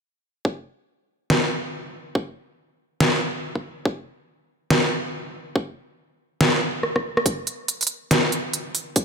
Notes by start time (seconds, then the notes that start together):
0.45 kick
1.30 snare
2.15 kick
3.00 snare
3.55 kick
3.85 kick
4.70 snare
5.56 kick
6.41 snare
6.83 cross-stick
6.96 kick, cross-stick
7.17 cross-stick
7.26 kick, closed hi-hat
7.47 closed hi-hat
7.68 closed hi-hat
7.81 closed hi-hat
7.83 closed hi-hat
7.87 closed hi-hat
8.11 snare, closed hi-hat
8.32 closed hi-hat
8.53 closed hi-hat
8.75 open hi-hat
8.96 kick, closed hi-hat